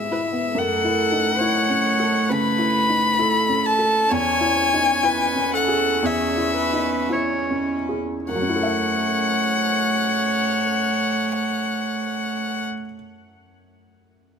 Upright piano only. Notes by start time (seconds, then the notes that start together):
Already playing: G#2 G#3 B3 E4 G#4
0.11 E4
0.32 B3
0.55 F#2
0.84 E4
1.12 D#4
1.40 E4
1.70 C#4
2.00 A4
2.30 C#3
2.58 E4
2.90 D#4
3.18 E4
3.49 C#4
3.79 A4
4.11 E2
4.40 E4
4.74 D#4
5.03 E4
5.35 C#4
5.68 G#4
6.02 E2
6.37 E4
6.73 D#4
7.10 E4
7.50 C#4
7.89 G#4
8.28 F#2
8.35 F#3
8.42 C#4
8.49 E4
8.56 A4
8.63 E5